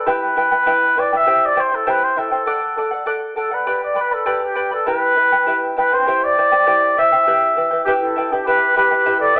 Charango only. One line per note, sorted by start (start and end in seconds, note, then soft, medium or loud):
0.06 0.35 E4 medium
0.06 0.36 G4 medium
0.06 0.36 B4 medium
0.06 0.35 E5 medium
0.06 0.36 G5 medium
0.36 0.51 E4 medium
0.36 0.50 B4 medium
0.36 0.51 E5 medium
0.36 0.50 G5 medium
0.51 0.66 E4 soft
0.51 0.65 B4 soft
0.51 0.66 G5 soft
0.66 0.96 E4 medium
0.66 0.96 G4 medium
0.66 0.96 B4 medium
0.66 0.96 E5 medium
0.66 0.97 G5 medium
0.97 1.12 E4 medium
0.97 1.12 B4 medium
0.97 1.12 E5 medium
0.97 1.11 G5 medium
1.13 1.26 E4 soft
1.13 1.27 B4 soft
1.13 1.26 G5 soft
1.26 1.55 E4 medium
1.26 1.56 G4 medium
1.26 1.56 C5 medium
1.26 1.54 E5 medium
1.26 1.56 G5 medium
1.56 1.71 E4 medium
1.56 1.71 C5 medium
1.56 1.71 E5 soft
1.56 1.71 G5 medium
1.72 1.86 E4 soft
1.72 1.86 C5 soft
1.72 1.86 G5 medium
1.87 2.16 E4 medium
1.87 2.17 G4 medium
1.87 2.17 C5 medium
1.87 2.15 E5 medium
1.87 2.17 G5 medium
2.16 2.31 E4 medium
2.16 2.30 C5 medium
2.16 2.31 E5 medium
2.16 2.30 G5 medium
2.31 2.47 E4 soft
2.31 2.46 C5 soft
2.31 2.46 G5 soft
2.46 2.76 A4 medium
2.46 2.77 D5 medium
2.46 2.77 F#5 medium
2.77 2.92 A4 soft
2.77 2.92 D5 medium
2.77 2.90 F#5 medium
2.91 3.06 D5 soft
2.91 3.06 F#5 soft
3.06 3.35 A4 medium
3.06 3.36 D5 medium
3.06 3.36 F#5 medium
3.36 3.51 A4 medium
3.36 3.51 D5 medium
3.36 3.50 F#5 medium
3.51 3.66 D5 soft
3.51 3.66 F#5 medium
3.66 3.96 G4 medium
3.66 3.95 B4 medium
3.66 3.95 D5 medium
3.66 3.94 G5 medium
3.66 3.95 B5 medium
3.95 4.11 B4 soft
3.95 4.10 D5 medium
3.95 4.11 G5 soft
3.95 4.10 B5 medium
4.11 4.25 B4 soft
4.11 4.25 D5 soft
4.11 4.26 B5 soft
4.26 4.56 G4 medium
4.26 4.54 B4 medium
4.26 4.55 D5 medium
4.26 4.54 G5 medium
4.26 4.55 B5 medium
4.55 4.71 B4 medium
4.55 4.71 D5 medium
4.55 4.71 G5 medium
4.55 4.70 B5 medium
4.71 4.86 B4 soft
4.71 4.86 D5 soft
4.71 4.86 B5 soft
4.86 5.15 E4 medium
4.86 5.17 G4 medium
4.86 5.16 B4 medium
4.86 5.15 E5 medium
4.86 5.16 G5 medium
5.16 5.32 E4 medium
5.16 5.32 B4 medium
5.16 5.31 E5 soft
5.16 5.31 G5 medium
5.32 5.46 E4 soft
5.32 5.46 B4 soft
5.32 5.47 G5 soft
5.47 5.76 E4 medium
5.47 5.77 G4 medium
5.47 5.76 B4 medium
5.47 5.75 E5 medium
5.47 5.77 G5 medium
5.77 5.92 E4 medium
5.77 5.92 B4 medium
5.77 5.92 E5 medium
5.77 5.91 G5 medium
5.92 6.06 E4 soft
5.92 6.07 B4 soft
5.92 6.07 G5 medium
6.07 6.37 E4 medium
6.07 6.37 G4 medium
6.07 6.37 C5 medium
6.07 6.37 E5 medium
6.07 6.37 G5 medium
6.38 6.52 E4 medium
6.38 6.51 C5 medium
6.38 6.52 E5 soft
6.38 6.51 G5 medium
6.52 6.66 E4 soft
6.52 6.66 C5 soft
6.52 6.66 G5 soft
6.66 6.97 E4 medium
6.66 6.96 G4 medium
6.66 6.97 C5 medium
6.66 6.96 E5 medium
6.66 6.97 G5 medium
6.97 7.12 E4 medium
6.97 7.11 C5 medium
6.97 7.12 E5 medium
6.97 7.11 G5 medium
7.12 7.26 E4 soft
7.12 7.27 C5 soft
7.12 7.27 G5 medium
7.27 7.56 E4 medium
7.27 7.57 G4 medium
7.27 7.56 B4 medium
7.27 7.55 E5 medium
7.27 7.56 G5 medium
7.56 7.71 E4 soft
7.56 7.71 B4 medium
7.56 7.71 E5 soft
7.56 7.70 G5 medium
7.71 7.87 E4 soft
7.71 7.87 B4 medium
7.71 7.86 G5 soft
7.86 8.15 E4 medium
7.86 8.16 G4 medium
7.86 8.16 B4 medium
7.86 8.15 E5 medium
7.86 8.16 G5 medium
8.16 8.31 E4 medium
8.16 8.31 B4 medium
8.16 8.31 E5 medium
8.16 8.31 G5 medium
8.32 8.46 E4 soft
8.32 8.46 B4 soft
8.32 8.47 G5 soft
8.47 8.75 E4 medium
8.47 8.76 G4 medium
8.47 8.75 B4 medium
8.47 8.75 E5 medium
8.47 8.76 G5 medium
8.76 8.91 E4 medium
8.76 8.90 B4 medium
8.76 8.91 E5 medium
8.76 8.90 G5 medium
8.91 9.05 E4 soft
8.91 9.05 B4 soft
8.91 9.05 G5 soft
9.06 9.35 E4 medium
9.06 9.36 G4 medium
9.06 9.36 B4 medium
9.06 9.34 E5 medium
9.06 9.36 G5 medium
9.36 9.40 E4 medium
9.36 9.40 E5 medium